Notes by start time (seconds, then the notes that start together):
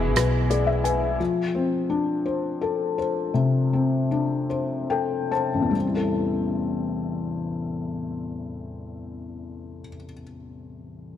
Already playing: E1 B2 E3 G#3 B3 E4 G#4 B4
0.16 B1 B4, cross-stick, closed hi-hat
0.50 G#4 D5, closed hi-hat
0.67 E5
0.84 B4 G#5, closed hi-hat
1.20 F3
1.55 C4
1.90 D4
2.26 C5
2.61 A4
2.98 C5
3.34 C3
3.73 C4
4.11 D4
4.50 C5
4.90 A4 G5
5.31 C5 A5
5.54 A1
5.62 E2
5.71 G3
5.79 C4
5.87 E4
5.95 A4